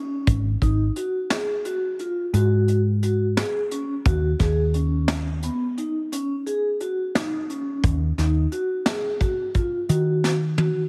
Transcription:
Already playing: vibraphone C#4
0.27 picked electric bass G#1, kick, closed hi-hat
0.62 picked electric bass G#1, vibraphone D#4, kick, closed hi-hat
0.96 vibraphone F#4, closed hi-hat
1.30 vibraphone G#4, snare, closed hi-hat
1.65 vibraphone F#4, closed hi-hat
1.99 vibraphone F4, closed hi-hat
2.33 picked electric bass G#2, vibraphone F#4, closed hi-hat
2.68 closed hi-hat
3.03 vibraphone F#4, closed hi-hat
3.37 vibraphone G#4, snare, closed hi-hat
3.71 vibraphone C#4, closed hi-hat
4.05 picked electric bass D#2, vibraphone F#4, kick, closed hi-hat
4.39 picked electric bass D#2, vibraphone G#4, kick, snare, closed hi-hat
4.74 vibraphone C#4, closed hi-hat
5.08 snare, closed hi-hat
5.43 vibraphone B3, closed hi-hat
5.78 vibraphone D#4, closed hi-hat
6.12 vibraphone C#4, closed hi-hat
6.47 vibraphone G#4, closed hi-hat
6.80 vibraphone F#4, closed hi-hat
7.15 vibraphone D#4, snare, closed hi-hat
7.50 vibraphone C#4, closed hi-hat
7.83 picked electric bass D#2, kick, closed hi-hat
8.18 picked electric bass D#2, vibraphone D#4, snare, closed hi-hat
8.52 vibraphone F#4, closed hi-hat
8.86 vibraphone G#4, snare, closed hi-hat
9.21 vibraphone F#4, kick, closed hi-hat
9.54 vibraphone F4, kick, closed hi-hat
9.89 picked electric bass D#3, vibraphone F#4, closed hi-hat
10.24 snare
10.58 vibraphone F#4, high tom

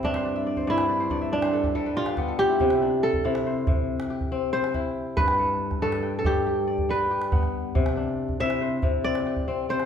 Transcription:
Already playing: kora C4 E4 G4
0.03 kora G2 D4 E5, calabash thump
0.14 kora C5, calabash click
0.25 kora D5
0.36 kora E5
0.47 kora D5
0.57 kora C5, calabash thump
0.67 kora G2 E4 D5, calabash click
0.78 kora E5, calabash click
0.89 kora D5
1.00 kora C5
1.10 kora G2 D5, calabash thump
1.21 kora E5
1.32 kora D4 D5
1.42 kora C5, calabash click
1.53 kora A4, calabash click
1.64 kora G4, calabash thump
1.75 kora G3 A4
1.86 kora B4
1.96 kora F4 G4
2.06 kora F4, calabash click
2.17 kora B3 G4, calabash thump
2.28 kora A4
2.38 kora F4 G4
2.50 kora E4
2.60 kora C3, calabash thump
2.70 calabash click
2.82 kora D4
3.03 kora A4
3.13 calabash thump
3.24 kora C3 E4, calabash click
3.35 calabash click
3.46 kora C5
3.67 kora C3, calabash thump
4.00 calabash click
4.10 kora G4, calabash click
4.21 calabash thump
4.32 kora C4
4.53 kora C4 C5
4.64 calabash click
4.74 kora E4, calabash thump
5.17 kora G2 B4, calabash thump
5.28 calabash click
5.39 kora A4
5.71 calabash thump, calabash click
5.82 kora G2 A4 B4, calabash click
5.92 calabash click
6.03 kora G5
6.19 kora A4
6.24 kora G2 G4, calabash thump
6.46 kora G4
6.67 kora D5
6.78 calabash thump
6.89 kora G3 B4
7.11 kora G4
7.22 calabash click
7.32 kora B3, calabash thump, calabash click
7.43 calabash click
7.75 kora C3, calabash thump
7.86 calabash click
7.97 kora D4
8.29 calabash thump
8.40 kora C3 E4 E5, calabash click
8.50 calabash click
8.62 kora C5
8.82 kora C3, calabash thump
9.04 kora C4 D5
9.15 calabash click
9.26 kora G4, calabash click
9.36 calabash thump
9.48 kora C4
9.69 kora C4 C5
9.80 calabash click

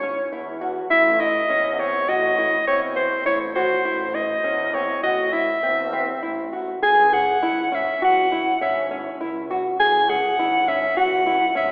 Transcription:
Already playing: double bass G#1, soprano saxophone C#5
0.03 nylon-string guitar C#4
0.32 double bass E2, nylon-string guitar E4
0.61 nylon-string guitar F#4
0.90 double bass A1, nylon-string guitar E4, soprano saxophone E5
1.20 nylon-string guitar E4, soprano saxophone D#5
1.49 double bass E2, nylon-string guitar C#4
1.72 soprano saxophone D#5
1.79 nylon-string guitar C4, soprano saxophone C#5
2.08 double bass A1, nylon-string guitar F#4, soprano saxophone D#5
2.38 nylon-string guitar E4
2.67 double bass E2, nylon-string guitar C4, soprano saxophone C#5
2.96 nylon-string guitar C4, soprano saxophone C5
3.26 double bass A1, nylon-string guitar E4, soprano saxophone C#5
3.55 nylon-string guitar F#4, soprano saxophone C5
3.84 double bass A1, nylon-string guitar E4
4.15 nylon-string guitar E4, soprano saxophone D#5
4.43 double bass E2, nylon-string guitar C#4
4.74 nylon-string guitar C4, soprano saxophone C#5
5.03 double bass A1, nylon-string guitar F#4, soprano saxophone D#5
5.33 nylon-string guitar E4, soprano saxophone E5
5.63 double bass E2, nylon-string guitar C4
5.93 nylon-string guitar C4
6.22 double bass A1, nylon-string guitar E4
6.53 nylon-string guitar F#4
6.82 double bass C#2, nylon-string guitar G#4, soprano saxophone G#5
7.13 nylon-string guitar G#4, soprano saxophone F#5
7.42 double bass G#1, nylon-string guitar E4
7.72 nylon-string guitar C#4, soprano saxophone E5
8.02 double bass C#2, nylon-string guitar F#4, soprano saxophone F#5
8.32 nylon-string guitar E4
8.61 double bass G#1, nylon-string guitar C#4, soprano saxophone E5
8.91 nylon-string guitar C#4
9.21 double bass C#2, nylon-string guitar E4
9.50 nylon-string guitar F#4
9.80 double bass C#2, nylon-string guitar G#4, soprano saxophone G#5
10.09 nylon-string guitar G#4, soprano saxophone F#5
10.38 double bass G#1, nylon-string guitar E4
10.68 nylon-string guitar C#4, soprano saxophone E5
10.97 double bass C#2, nylon-string guitar F#4, soprano saxophone F#5
11.26 nylon-string guitar E4
11.55 double bass G#1, nylon-string guitar C#4, soprano saxophone E5

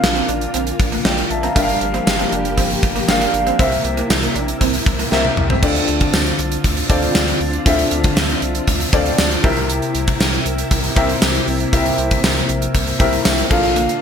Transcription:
Already playing: grand piano A#2 D4 F4 A#4 F5, string machine D3 A#3 F4
0.03 analog synth bass A#1, muted clean electric guitar stroke, snare
0.16 clean electric guitar C4, closed hi-hat
0.29 analog synth bass A1, clean electric guitar D4, closed hi-hat
0.41 closed hi-hat
0.54 analog synth bass A#1, clean electric guitar C4, closed hi-hat
0.67 closed hi-hat
0.80 analog synth bass A#1, muted clean electric guitar stroke, kick, closed hi-hat
0.92 clean electric guitar A#3, closed hi-hat
1.05 analog synth bass A#1, clean electric guitar A#3, grand piano D5 G5, snare
1.18 muted clean electric guitar stroke, closed hi-hat
1.30 analog synth bass A#1, grand piano E5 A5, closed hi-hat
1.43 clean electric guitar C4, grand piano F5 A#5, closed hi-hat
1.55 analog synth bass G1, grand piano G2 D4 G4 A#4 E5, string machine F3 G4, clean electric guitar G3, kick, closed hi-hat
1.62 grand piano F5
1.69 closed hi-hat
1.81 analog synth bass G1, muted clean electric guitar stroke, closed hi-hat
1.94 clean electric guitar C4, closed hi-hat
2.07 analog synth bass G1, muted clean electric guitar stroke, snare, tambourine
2.19 clean electric guitar C4, closed hi-hat
2.32 analog synth bass F1, clean electric guitar D4, closed hi-hat
2.45 closed hi-hat
2.57 analog synth bass G1, clean electric guitar C4, kick, closed hi-hat
2.70 closed hi-hat
2.83 analog synth bass G1, muted clean electric guitar stroke, kick, closed hi-hat
2.96 clean electric guitar A#3, closed hi-hat
3.08 analog synth bass G1, clean electric guitar A#3, grand piano D4 G4 A#4 F5, snare, tambourine
3.21 muted clean electric guitar stroke, closed hi-hat
3.34 analog synth bass G1, closed hi-hat
3.47 clean electric guitar C4, closed hi-hat
3.59 analog synth bass C2, string machine C3 E4, grand piano C3 C4 G4 A#4 E5, clean electric guitar C4, kick, closed hi-hat
3.72 closed hi-hat
3.84 analog synth bass C2, muted clean electric guitar stroke, closed hi-hat
3.97 clean electric guitar A#3, closed hi-hat
4.10 analog synth bass C2, muted clean electric guitar stroke, snare, tambourine
4.23 clean electric guitar A#3, closed hi-hat
4.35 analog synth bass A#1, clean electric guitar D4, closed hi-hat
4.48 closed hi-hat
4.61 analog synth bass C2, clean electric guitar C4, kick, closed hi-hat
4.74 closed hi-hat
4.86 analog synth bass C2, muted clean electric guitar stroke, kick, closed hi-hat
4.99 clean electric guitar A#3, closed hi-hat
5.11 analog synth bass C2, clean electric guitar A#3, grand piano C4 G4 A#4 E5, snare
5.25 muted clean electric guitar stroke, high tom
5.37 analog synth bass C2, mid tom
5.50 clean electric guitar C4, floor tom
5.62 analog synth bass D2, string machine D3 C4 F4, grand piano D3 C4 D4 F4 A4 D5, kick, crash
5.76 closed hi-hat
5.88 analog synth bass D2, closed hi-hat
6.00 kick, closed hi-hat
6.13 analog synth bass D2, snare, tambourine
6.26 closed hi-hat
6.39 analog synth bass C2, closed hi-hat
6.52 closed hi-hat
6.64 analog synth bass D2, kick, closed hi-hat
6.77 closed hi-hat
6.89 analog synth bass D2, grand piano C4 D4 F4 A4 D5, kick, closed hi-hat
7.02 closed hi-hat
7.15 analog synth bass D2, snare, tambourine
7.28 closed hi-hat
7.41 analog synth bass D2, open hi-hat
7.53 closed hi-hat
7.65 analog synth bass D2, grand piano D3 C4 D4 F4 A4 E5, kick, closed hi-hat
7.79 closed hi-hat
7.91 analog synth bass D2, closed hi-hat
8.04 kick, closed hi-hat
8.17 analog synth bass D2, snare, tambourine
8.29 closed hi-hat
8.42 analog synth bass C2, closed hi-hat
8.55 closed hi-hat
8.67 analog synth bass D2, kick, closed hi-hat
8.80 closed hi-hat
8.92 analog synth bass D2, grand piano C4 D4 F4 A4 D5, kick, closed hi-hat
9.06 closed hi-hat
9.18 analog synth bass D2, snare, tambourine
9.31 closed hi-hat
9.43 analog synth bass C2, grand piano C3 C4 E4 G4 A#4 E5, string machine C3 A#3 E4, kick, open hi-hat
9.57 closed hi-hat
9.70 closed hi-hat
9.82 closed hi-hat
9.95 analog synth bass C2, closed hi-hat
10.07 kick, closed hi-hat
10.20 analog synth bass C2, snare, tambourine
10.33 closed hi-hat
10.46 analog synth bass C2, closed hi-hat
10.58 closed hi-hat
10.71 analog synth bass C2, kick, closed hi-hat
10.84 closed hi-hat
10.96 analog synth bass C2, grand piano C4 E4 G4 A#4 E5, kick, closed hi-hat
11.09 closed hi-hat
11.22 analog synth bass C2, snare, tambourine
11.35 closed hi-hat
11.47 analog synth bass C2, grand piano C3, open hi-hat
11.60 closed hi-hat
11.72 analog synth bass C2, grand piano C4 E4 G4 A#4 E5, kick, closed hi-hat
11.86 closed hi-hat
11.98 analog synth bass C2, closed hi-hat
12.11 kick, closed hi-hat
12.24 analog synth bass C2, snare, tambourine
12.36 closed hi-hat
12.49 analog synth bass A#1, closed hi-hat
12.62 closed hi-hat
12.74 analog synth bass C2, kick, closed hi-hat
12.87 closed hi-hat
12.99 analog synth bass C2, grand piano C4 E4 G4 A#4 E5, kick, closed hi-hat
13.13 closed hi-hat
13.25 analog synth bass C2, snare, tambourine
13.38 closed hi-hat
13.50 analog synth bass A#1, grand piano A#2 D4 F4 A4 A#4 F5, string machine D3 A5, kick, crash
13.63 closed hi-hat
13.76 clean electric guitar A#3, closed hi-hat
13.89 closed hi-hat

